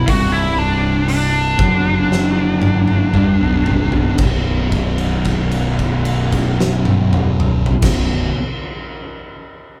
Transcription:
0.08 C1 C2 C3 F#4, kick, open hi-hat
0.33 E4
0.59 D4
1.08 D4, open hi-hat
1.59 F#1 F#2 F#3, kick
2.12 snare
2.62 high tom
2.88 high tom
3.13 G1 G2 G3, mid tom
3.40 B0 B1 B2
3.66 C1 C2 C3, floor tom
3.92 B0 B1 B2, floor tom
4.18 B0 B1 F#2 B2, kick, crash
4.72 kick, crash
4.98 crash
5.24 kick, crash
5.51 crash
5.79 kick, crash
6.05 crash
6.32 kick, crash
6.60 snare
6.85 high tom
7.13 mid tom
7.40 mid tom
7.66 floor tom
7.81 B0 B1 F#2 B2, kick, snare, crash

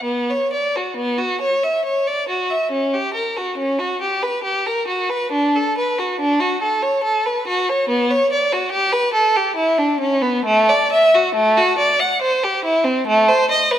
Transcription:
0.03 B3
0.30 C#5
0.53 D5
0.76 F#4
0.96 B3
1.18 F#4
1.41 C#5
1.63 E5
1.85 C#5
2.07 D5
2.28 F#4
2.50 E5
2.71 C#4
2.94 G4
3.14 A#4
3.37 F#4
3.58 C#4
3.79 F#4
4.01 G4
4.23 B4
4.44 G4
4.66 A#4
4.87 F#4
5.10 B4
5.32 D4
5.56 A4
5.78 B4
5.99 F#4
6.20 D4
6.40 F#4
6.62 A4
6.82 C#5
7.04 A4
7.26 B4
7.47 F#4
7.69 C#5
7.89 B3
8.11 C#5
8.32 D5
8.53 F#4
8.71 G4
8.92 B4
9.14 A4
9.36 G4
9.56 E4
9.78 D4
10.00 C#4
10.22 B3
10.45 A3
10.69 D5
10.92 E5
11.14 F#4
11.35 A3
11.57 F#4
11.78 D5
12.00 F#5
12.22 C5
12.44 G4
12.65 E4
12.85 C4
13.07 A3
13.29 C5
13.51 D#5
13.71 B4

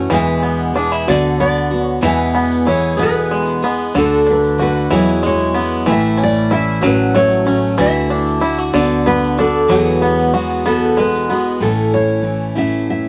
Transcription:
Already playing: A3 C#4 C#5
0.10 E1 E2 B2 E3 G#3 B3 G#4, shaker
0.14 E5
0.28 shaker
0.43 B3
0.74 E3 G#3 B3 D4 G#4
0.92 E4
1.07 D2 D3 B3 F#4 D5, shaker
1.40 B3 D5
1.55 shaker
1.71 B3 F#4, shaker
1.82 C#5
2.01 E2 B2 E3 G#3 B3 G#4 E5, shaker
2.35 B3
2.52 shaker
2.65 E3 G#3 B3 E4 G#4 C#5
2.97 E2 B2 E3 G#3 B3 G#4, shaker
3.03 B4
3.16 shaker
3.31 G#3
3.47 shaker
3.62 E3 G#3 B3 G#4, shaker
3.95 D2 D3 A3 D4 F#4 A4, shaker
4.11 shaker
4.27 D4
4.31 B4
4.44 shaker
4.58 D3 A3 D4 F#4 B4
4.91 E2 B2 E3 F#3 G#3 B3 E4 C#5, shaker
5.23 G#3 C#5
5.38 shaker
5.54 F#3 G#3 B3 E4, shaker
5.86 A1 A2 E3 A3 E4, shaker
5.92 E5
6.02 shaker
6.18 C#4
6.23 D5
6.34 shaker
6.50 E3 A3 C#4 E4 E5
6.81 A1 A2 F#3 A3 C#4 F#4, shaker
6.86 B4
7.15 A3 C#5
7.29 shaker
7.45 A3 C#4 F#4, shaker
7.77 D2 D3 E3 A3 E4 F#4 E5, shaker
7.94 shaker
8.10 D4
8.26 shaker
8.40 D3 A3 E4 F#4
8.58 F#4
8.73 D2 D3 B3 D4 F#4 D5, shaker
9.06 B3 B4
9.23 shaker
9.38 B3 D4 F#4 A4, shaker
9.68 E2 B2 E3 F#3 G#3 B3 F#4 G#4, shaker
9.88 shaker
10.02 B3, shaker
10.17 shaker
10.33 E3 G#3 B3 F#4
10.50 shaker
10.65 E2 B2 E3 B3 F#4 A4, shaker
10.82 shaker
10.97 G#3 B4
11.14 shaker
11.29 E3 G#3 B3 F#4
11.60 A1 A2 E3 A3 C#4 E4 A4
11.94 C#5
12.21 E3 A3 C#4 E4
12.55 A2 E3 A3 C#4 E4 E5
12.90 E5

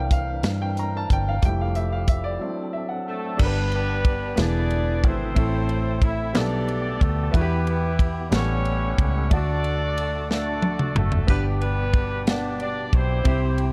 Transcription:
Already playing: C2 E3 A#3 C4 D4 A#4 E5 F5 G5
0.11 F5, kick, closed hi-hat
0.43 G2, snare, closed hi-hat
0.62 G5
0.77 A#5, closed hi-hat
0.97 A5
1.10 G1 G5, kick, closed hi-hat
1.29 F5
1.42 F1 F3 G3 A3 E4 G4 G5, kick, closed hi-hat
1.61 F5
1.75 E5, closed hi-hat
1.92 F5
2.08 E5, kick, closed hi-hat
2.24 D5
2.40 F#3 C4 D4 E4 A4
2.73 E5
2.89 F#5
3.08 A3 A4
3.37 G1 G2 G3 B3 D4 G4 A#4, kick, crash
3.42 B3 D4 G4 B4
3.46 B4
3.72 B3 D4 G4 B4, ride
4.05 kick, ride
4.36 E1 B2 D3 E3 B3 D4 E4 G#4 D5, snare, ride
4.40 G#4 B4
4.71 ride
5.04 G#1 C4 E4 C5, kick, ride
5.08 A4
5.35 A1 A2 A3 C4 E4 A4, kick, ride
5.69 ride
6.02 E4 E5, kick, ride
6.33 B1 B2 G3 A3 B3 D4 D#4 G4 A4 D5, snare, ride
6.37 G4 A4
6.68 ride
7.01 D2 A3 A4, kick, ride
7.31 E2 E3 B3 E4 F#4 G4 B4, kick, ride
7.37 E4 G4
7.41 G4
7.67 B3 B4, ride
7.99 kick, ride
8.29 A1 A2 G3 B3 C#4 A4 F#5, snare, ride
8.34 C#4 E4 G4 C#5
8.65 ride
8.98 C#2 C#4 C#5, kick, ride
9.30 D2 D3 A3 D4 E4 F#4 D5, kick, ride
9.34 F#4 A4
9.64 ride
9.98 ride
10.30 A3 D4 F#4 A4 D5, snare
10.62 high tom
10.79 mid tom
10.95 F#1 A3 A4, mid tom
11.12 floor tom
11.27 G1 G2 B2 B3 D4 G4 B4, kick, splash
11.31 D4 G4
11.61 B3 D4 G4 B4, ride
11.93 kick, ride
12.27 B3 D4 D5 F#5, snare, ride
12.60 D4 D5, ride
12.93 B1 C4 E4 G4 C5, kick, ride
13.24 C2 C3 C4 E4 G4, kick, ride
13.58 ride

